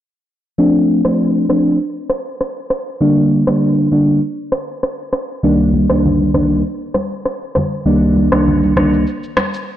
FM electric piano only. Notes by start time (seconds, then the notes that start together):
0.58 F3 A3 C4 D4
1.05 F3 A3 C4 D4
1.49 F3 A3 C4 D4
3.01 D3 G3 A#3 D4
3.48 D3 G3 A#3 D4
3.92 D3 G3 A#3 D4
5.43 C2 D#3 G3 A#3 D4
5.90 C2 D#3 G3 A#3 D4
6.34 C2 D#3 G3 A#3 D4
7.86 C2 D#3 G3 A#3 D4
8.33 C2 D#3 G3 A#3 D4
8.76 C2 D#3 G3 A#3 D4